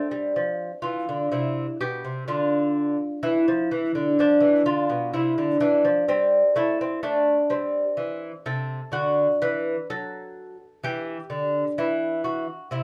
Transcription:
lute
Already playing: A3 C4
0.11 G3
0.36 F3
0.82 E3 F4
1.09 D3
1.32 C3 E4
1.80 B2 G4
2.05 C3
2.28 D3 F4
3.23 E3 E4
3.48 F3
3.71 E3
3.95 D3
4.19 F3 D4
4.40 E3
4.66 D3 F4
4.89 B2
5.13 C3 E4
5.38 D3
5.60 E3 D4
5.85 F3
6.08 G3 C4
6.56 A3 E4
6.81 C4
7.03 A3 D4
7.50 G3 C4
7.97 E3
8.46 C3 A4
8.92 D3 F#4
9.42 E3 B4
9.90 F#3 A4
10.83 E3 G4
11.30 D3
11.78 E3 E4
12.24 F#4
12.71 C3 E4

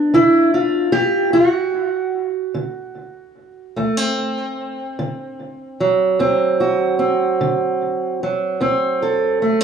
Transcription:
steel-string acoustic guitar
Already playing: B3 D4
0.14 D3 E4
0.54 F4
0.92 G4
1.33 D2 F#4
2.54 D3
3.76 D2 A3
3.97 C4
4.99 D3
5.80 F#3
6.19 D2 C4
6.60 F#4
6.99 C4
7.41 D3
8.23 F#3
8.60 D2 C4
9.02 A4
9.42 A3
9.61 C4

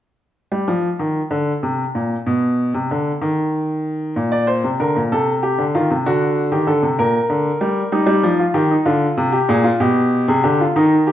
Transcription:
grand piano
0.52 G3
0.68 F3
0.99 D#3
1.31 D3
1.63 C3
1.95 A#2
2.26 B2
2.74 C3
2.91 D3
3.21 D#3
4.16 A#2
4.32 D5
4.47 C5
4.64 C3
4.80 D3 A#4
4.96 A#2
5.12 C3 A4
5.43 G4
5.58 D3
5.75 D#3 F4
5.91 C3
6.06 D3 F#4
6.52 D#3 G4
6.67 D3 A4
6.83 C3
6.99 A#2 A#4
7.30 D3
7.61 G3
7.92 G3 D#4
8.06 G3
8.23 F3
8.39 F4
8.54 D#3 G4
8.71 D#4
8.85 D3 F4
9.17 C3
9.32 G4
9.48 A#2 G#4
9.64 F4
9.80 B2 G4
10.28 C3 G#4
10.44 D3 G4
10.61 F4
10.76 D#3 D#4
11.07 G4

